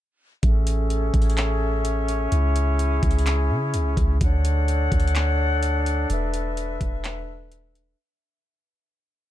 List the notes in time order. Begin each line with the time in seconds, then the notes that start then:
0.43 A1 C#4 G#4 A4 E5, kick, closed hi-hat
0.67 closed hi-hat
0.90 closed hi-hat
1.14 A1, kick, closed hi-hat
1.22 closed hi-hat
1.30 closed hi-hat
1.37 clap, closed hi-hat
1.85 closed hi-hat
2.08 closed hi-hat
2.32 C#2 E4 G#4, closed hi-hat
2.56 closed hi-hat
2.79 closed hi-hat
3.03 C#2, kick, closed hi-hat
3.11 closed hi-hat
3.19 closed hi-hat
3.26 clap, closed hi-hat
3.50 C#3
3.74 C#2, closed hi-hat
3.97 C#2, kick, closed hi-hat
4.21 D2 D4 A4 C#5 F#5, kick, closed hi-hat
4.45 closed hi-hat
4.68 closed hi-hat
4.92 D2, kick, closed hi-hat
5.00 closed hi-hat
5.08 closed hi-hat
5.15 clap, closed hi-hat
5.63 closed hi-hat
5.86 closed hi-hat
6.10 E1 B4 E5, closed hi-hat
6.34 closed hi-hat
6.57 closed hi-hat
6.81 E1, kick, closed hi-hat
7.04 clap, closed hi-hat
7.52 closed hi-hat
7.75 closed hi-hat